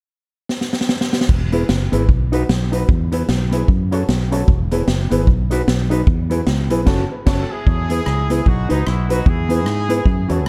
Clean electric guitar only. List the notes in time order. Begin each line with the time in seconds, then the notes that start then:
1.52 B3 E4 G#4
1.92 B3 E4 G#4
2.32 D#4 F#4 B4
2.49 muted clean electric guitar stroke
2.72 D#4 F#4 B4
3.12 B3 E4 G#4
3.28 muted clean electric guitar stroke
3.51 B3 E4 G#4
3.92 C#4 F#4 A4
4.31 C#4 F#4 A4
4.71 B3 E4 G#4
5.10 B3 E4 G#4
5.51 D#4 F#4 B4
5.68 muted clean electric guitar stroke
5.90 D#4 F#4 B4
6.30 B3 E4 G#4
6.46 muted clean electric guitar stroke
6.70 B3 E4 G#4
6.86 C#4 F#4 A4
7.26 C#4 F#4 A4
7.90 B3 E4 G#4
8.30 B3 E4 G#4
8.69 D#4 F#4 B4
8.86 muted clean electric guitar stroke
9.09 D#4 F#4 B4
9.49 B3 E4 G#4
9.66 muted clean electric guitar stroke
9.89 B3 E4 G#4
10.28 C#4 F#4 A4